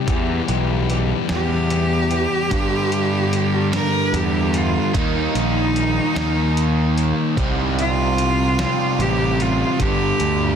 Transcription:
0.08 E2 E3 G3 B3 E4 G4, kick, closed hi-hat
0.48 B1 E3 G3 B3 G4, closed hi-hat
0.90 E3 G3 B3 G4, closed hi-hat
1.29 E2 E3 G3 B3 G4, snare, closed hi-hat
1.70 E3 G3 B3 G4, closed hi-hat
2.11 E3 G3 B3 G4, closed hi-hat
2.50 G2 D3 G3 B3 D4, kick, closed hi-hat
2.92 closed hi-hat
3.33 closed hi-hat
3.72 G2 D3 G3 A#4, snare, closed hi-hat
4.13 E2 G4, closed hi-hat
4.54 F4, closed hi-hat
4.94 D#2 D#3 G3 A#3 D#4, kick, closed hi-hat
5.35 A#1 D#4, closed hi-hat
5.76 closed hi-hat
6.15 D#2 D#3 A#3 D#4, snare, closed hi-hat
6.57 closed hi-hat
6.98 closed hi-hat
7.37 C2 C3 G3 C4 D#4, kick, closed hi-hat
7.79 F4, closed hi-hat
8.18 closed hi-hat
8.58 C3 G3 C4, snare, closed hi-hat
8.99 A1 G4, closed hi-hat
9.40 F4, closed hi-hat
9.79 G1 G2 D3 G3 B3 D4 G4, kick, closed hi-hat
10.20 D2, closed hi-hat

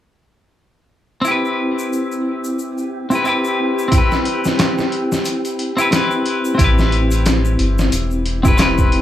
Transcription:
1.21 C4 E4 G4, shaker
1.28 G4 B4
1.45 shaker
1.79 shaker
1.93 shaker
2.12 shaker
2.44 shaker
2.59 shaker
2.78 shaker
3.10 C4 E4 G4, shaker
3.15 B4
3.24 C4 E4 G4, shaker
3.29 B4
3.44 shaker
3.79 shaker
3.88 C4 E4, kick, closed hi-hat
3.92 G4, shaker
3.98 B4
4.11 snare, shaker
4.25 closed hi-hat
4.44 snare, shaker
4.59 snare, closed hi-hat, shaker
4.78 snare, shaker
4.92 closed hi-hat
5.12 snare, shaker
5.25 closed hi-hat, shaker
5.45 closed hi-hat, shaker
5.59 closed hi-hat
5.77 C4 E4 G4, shaker
5.81 B4
5.91 C4 E4 G4, snare, closed hi-hat, shaker
5.96 B4
6.11 shaker
6.26 closed hi-hat
6.45 shaker
6.55 C4 E4
6.59 A1 G4, kick, closed hi-hat, shaker
6.64 B4
6.78 snare, shaker
6.92 closed hi-hat
7.11 closed hi-hat, shaker
7.26 snare, closed hi-hat, shaker
7.45 shaker
7.59 G1, closed hi-hat
7.78 snare, shaker
7.92 E1, closed hi-hat, shaker
8.11 shaker
8.26 closed hi-hat
8.43 C4 E4 G4, kick, shaker
8.48 B4
8.57 C4 E4 G4, snare, closed hi-hat, shaker
8.62 B4
8.78 kick, shaker
8.92 closed hi-hat

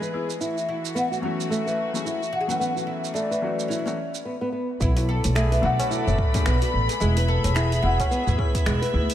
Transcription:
Already playing: E3 B3 E4 G#4
0.02 B4, shaker
0.12 G#3 B3 E4
0.30 shaker
0.40 E3 A3 E4 F#4, shaker
0.58 shaker
0.69 E4
0.85 shaker
0.95 B3 F#4, shaker
1.11 F#4, shaker
1.21 E3 F#3 A3 C#4
1.25 F#4
1.41 shaker
1.50 A3, shaker
1.66 B4, shaker
1.93 E3 F#3 A3 C#4 G#4, shaker
2.05 E4, shaker
2.23 shaker
2.33 F#4
2.41 G#4
2.47 E3 F#3 A3 C#4 F#4 B4, shaker
2.60 E3 A3 B3, shaker
2.76 F#4, shaker
2.87 E4
3.05 shaker
3.14 A3 D4, shaker
3.31 B4, shaker
3.41 E3 F#3 A3 C#4 F#4
3.60 shaker
3.68 C#4 E4, shaker
3.79 D4
3.85 E3 F#3 A3 C#4 F#4, shaker
4.15 shaker
4.25 B3
4.41 B3
4.52 B3
4.80 B1 B3 E4 A4 B4 D5 B5, kick, shaker
4.96 F#4, open hi-hat, tabla tin, shaker
5.09 A4
5.24 B1, open hi-hat, tabla tin, shaker
5.35 A3 G#4, finger snap, shaker
5.52 B4, open hi-hat, shaker
5.61 B1 D3 F#3 A3 B3 F#4
5.65 F#4
5.80 open hi-hat, tabla na, shaker
5.91 E4, shaker
6.07 F#1, tabla tin, tabla ge, shaker
6.18 kick, tabla na
6.33 D3 F#3 A3 B3 G#4, kick, open hi-hat, tabla na, shaker
6.46 B1 B3, finger snap, shaker
6.62 F#4, open hi-hat, shaker
6.74 A1
6.88 G#3 B3, open hi-hat, shaker
6.92 G#4
7.00 E1 G#3 E4 G#4 E5, shaker
7.17 B4, open hi-hat, tabla tin, shaker
7.28 A4
7.44 E1, open hi-hat, tabla tin, shaker
7.55 E4 G#4, finger snap, shaker
7.72 open hi-hat, shaker
7.82 E1 G#3 B3 E4 F#4
8.00 kick, open hi-hat, tabla na, shaker
8.11 B3, shaker
8.27 E2 G#3 B3 E4 F#4, tabla ge, shaker
8.37 G#3 B3 E4, kick, tabla na
8.55 kick, open hi-hat, shaker
8.66 E1 G#3, finger snap, shaker
8.82 B4, open hi-hat, shaker
8.92 D2 G#3 B3 E4
9.10 open hi-hat, shaker

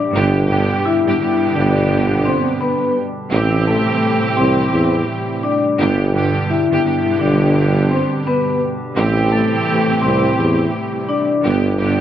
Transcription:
Already playing: C3 A3 D4 E4 G4 D5
0.13 G1 G2 B2 D3 G3 B3 D4 G4
0.47 G2 D3 B3 G4
0.85 E4 E5
1.05 G2 D3 B3 G4
1.18 G2 D3 B3 G4
1.42 G1
1.55 G1 D4 D5
2.25 C4 C5
2.61 B3 B4
3.30 A1 A2 C3 E3 G3 A3 C4 E4 G4
3.67 A3 A4
4.24 C2
4.37 C2 C4 C5
4.73 E2
5.43 D4 D5
5.78 G1 G2 B2 D3 B3 D4 G4
6.12 G2 D3 B3 G4
6.50 E4 E5
6.70 G2 D3 B3 G4
6.83 G2 D3 B3 G4
7.06 G1
7.20 G1 D4 D5
7.91 C4 C5
8.27 B3 B4
8.95 A1 A2 C3 E3 A3 C4 E4 G4
9.31 A3 A4
9.89 C2
10.02 C2 C4 C5
10.38 E2
11.09 D4 D5
11.43 G1 G2 B2 D3 G3 B3 D4 G4
11.77 G2 D3 B3 G4

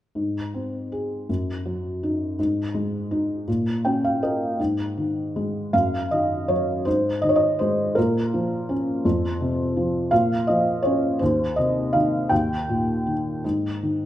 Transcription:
0.15 G#2
0.54 C4
0.92 G#4
1.29 F#2
1.65 F#3
2.03 D#4
2.39 G#2
2.74 G#3
3.11 D#4
3.48 A#2
3.85 C#4 G5
4.04 F5
4.23 A#4 D#5
4.59 G#2
4.97 D#3
5.36 G#3
5.73 F#2 F5
6.11 D#3 D#5
6.48 F#3 C#5
6.85 G#2 C5
7.22 D#3 D#5
7.29 C#5
7.36 D#5
7.59 G#3 C5
7.95 A#2 A#4
8.34 F3
8.69 C#4
9.05 F2
9.41 C3
9.77 F3
10.11 A#2 F5
10.47 F3 D#5
10.83 C#4 C#5
11.19 D#2 C5
11.56 C3 D#5
11.93 D#3 F5
12.29 D#2 G5
12.69 A#2
13.07 D#3
13.44 G#2
13.83 D#3

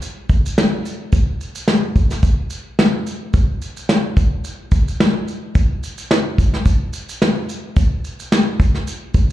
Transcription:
0.02 shaker
0.29 kick, shaker
0.46 shaker
0.58 snare, shaker
0.86 shaker
1.13 kick, shaker
1.41 shaker
1.55 shaker
1.68 snare, shaker
1.96 kick, shaker
2.11 snare, shaker
2.23 kick, shaker
2.50 shaker
2.79 snare, shaker
3.07 shaker
3.34 kick, shaker
3.62 shaker
3.77 shaker
3.89 snare, shaker
4.17 kick, shaker
4.44 shaker
4.72 kick, shaker
4.88 shaker
5.00 snare, shaker
5.28 shaker
5.55 kick, shaker
5.83 shaker
5.98 shaker
6.11 snare, shaker
6.38 kick, shaker
6.54 snare
6.66 kick, shaker
6.93 shaker
7.09 shaker
7.22 snare, shaker
7.49 shaker
7.77 kick, shaker
8.04 shaker
8.20 shaker
8.32 snare, shaker
8.60 kick, shaker
8.74 snare
8.87 shaker
9.14 kick, shaker

